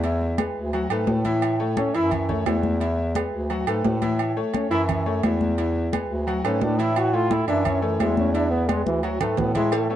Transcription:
Already playing: E2
0.03 E3 E4 E5, high conga, low agogo
0.21 high conga
0.38 G#3 G#4 B4, high conga, low timbale, low agogo
0.55 D2
0.73 F#3 F#4 F#5, high conga, low agogo
0.89 G#2 A3 A4 B4, high conga, low agogo
1.07 A2, high conga, low timbale
1.25 E3 E4 E5, high conga, low agogo
1.42 high conga, low agogo
1.60 A3 A4 C#5, high conga
1.76 A3 C#4 A4 C#5, high conga, low timbale, low agogo
1.94 F#2 E3 E4 E5, high conga, low agogo
2.11 high conga, low conga, low agogo
2.29 A3 A4 C#5, high conga, low conga
2.46 E2 E3 E4 E5, high conga, low timbale, low agogo
2.63 high conga
2.80 E3 E4 E5, high conga, low agogo
2.98 high conga
3.15 G#3 G#4 B4, high conga, low timbale, low agogo
3.33 D2
3.50 F#3 F#4 F#5, high conga, low agogo
3.67 G#2 A3 A4 B4, high conga, low agogo
3.84 A2, high conga, low timbale
4.02 E3 E4 E5, high conga, low agogo
4.19 high conga, low agogo
4.37 A3 A4 C#5, high conga
4.54 A3 C#4 A4 C#5, high conga, low timbale, low agogo
4.71 F#2 E3 E4 E5, high conga, low agogo
4.89 high conga, low conga, low agogo
5.06 A3 A4 C#5, high conga
5.23 E2 E3 E4 E5, high conga, low timbale, low agogo
5.41 high conga
5.58 E3 E4 E5, high conga, low agogo
5.76 high conga
5.92 G#3 G#4 B4, high conga, low timbale, low agogo
6.10 D2
6.27 F#3 F#4 F#5, high conga, low agogo
6.44 G#2 A3 C#4 A4 B4, high conga, low agogo
6.61 A2 D4, high conga, low timbale
6.79 E3 E4 E5, low agogo
6.96 F#4, high conga, low agogo
7.13 A3 F4 A4 C#5, high conga
7.31 A3 E4 A4 C#5, high conga, low timbale, low agogo
7.47 F#2 E3 D4 E4 E5, high conga, low agogo
7.65 C#4, high conga, low conga, low agogo
7.82 E3 A3 A4 C#5, high conga
7.99 E2 E3 G#3 E4 E5, high conga, low timbale, low agogo
8.17 C#4, high conga
8.34 E3 D4 E4 E5, high conga, low agogo
8.51 B3, high conga
8.69 G#3 G#4 B4, high conga, low timbale, low agogo
8.86 D2 E3, high conga
9.03 F#3 F#4 F#5, low agogo
9.20 G#2 A3 A4 B4, low conga, low agogo
9.37 A2 B3, low conga, low timbale
9.55 E3 G#3 E4 E5, low conga, low agogo
9.72 A3, cowbell, high conga, low agogo
9.90 A3 B3 A4 C#5, high conga

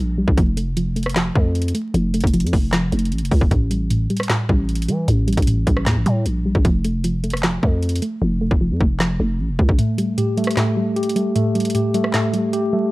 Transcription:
Already playing: A2 G3
0.00 A#1
0.18 G3
0.28 A1, kick
0.37 F1 F3, kick, closed hi-hat
0.57 A3, closed hi-hat
0.77 F3, closed hi-hat
0.96 A3, closed hi-hat
1.03 cross-stick, closed hi-hat
1.09 closed hi-hat
1.16 F3, snare, clap, closed hi-hat
1.35 F2 A3, kick
1.55 closed hi-hat
1.62 closed hi-hat
1.68 closed hi-hat
1.75 A3, closed hi-hat
1.94 F1 F3, closed hi-hat
2.14 A3, closed hi-hat
2.20 F1, kick, closed hi-hat
2.27 closed hi-hat
2.33 F3, closed hi-hat
2.40 F2, closed hi-hat
2.47 closed hi-hat
2.53 F1 A3, kick, open hi-hat
2.73 F3, snare, clap, closed hi-hat
2.92 F1 A3, closed hi-hat
2.99 closed hi-hat
3.05 closed hi-hat
3.12 A1, closed hi-hat
3.18 F1, closed hi-hat
3.25 closed hi-hat
3.31 C2 A3, kick, open hi-hat
3.41 F1, kick
3.51 A1 A2, kick, closed hi-hat
3.71 G3, closed hi-hat
3.90 A2, closed hi-hat
4.10 G3, closed hi-hat
4.17 cross-stick, closed hi-hat
4.23 closed hi-hat
4.30 A2, snare, clap, closed hi-hat
4.49 A1 G3, kick
4.69 closed hi-hat
4.75 closed hi-hat
4.82 closed hi-hat
4.88 E3 G3, closed hi-hat
5.08 A1 A2, closed hi-hat
5.27 G3, closed hi-hat
5.33 closed hi-hat
5.37 A1, kick, closed hi-hat
5.42 closed hi-hat
5.47 A2, closed hi-hat
5.67 A1 G3, kick, closed hi-hat
5.77 cross-stick
5.86 E2 A2, snare, clap, closed hi-hat
5.96 A1
6.06 A2 G3, closed hi-hat
6.26 A#1, closed hi-hat
6.45 G3
6.55 A1, kick
6.65 F1 F3, kick, closed hi-hat
6.84 A3, closed hi-hat
7.04 F3, closed hi-hat
7.24 A3, closed hi-hat
7.30 cross-stick, closed hi-hat
7.37 closed hi-hat
7.43 F3, snare, clap, closed hi-hat
7.63 F2 A3, kick
7.82 closed hi-hat
7.89 closed hi-hat
7.96 closed hi-hat
8.02 A3, closed hi-hat
8.21 F1 F3
8.41 A3
8.51 F1, kick
8.61 F3
8.71 F2
8.80 F1 A3, kick
9.00 F3, snare, clap
9.20 F1 A3
9.39 A1
9.49 F1
9.59 C2 A3, kick
9.69 A1, kick
9.78 A2 A3, closed hi-hat
9.98 G3, closed hi-hat
10.18 A2 G4, closed hi-hat
10.37 G3 A3, closed hi-hat
10.44 cross-stick, closed hi-hat
10.51 closed hi-hat
10.57 A2 A3, snare, clap, closed hi-hat
10.77 G3
10.96 G4, closed hi-hat
11.03 closed hi-hat
11.09 closed hi-hat
11.16 G3 A3, closed hi-hat
11.35 A2 A3, closed hi-hat
11.55 G3, closed hi-hat
11.60 closed hi-hat
11.65 closed hi-hat
11.70 closed hi-hat
11.75 A2 G4, closed hi-hat
11.94 G3 A3, closed hi-hat
12.04 cross-stick
12.14 A2 A3, snare, clap, closed hi-hat
12.33 G3, closed hi-hat
12.53 G4, closed hi-hat
12.73 G3 A3

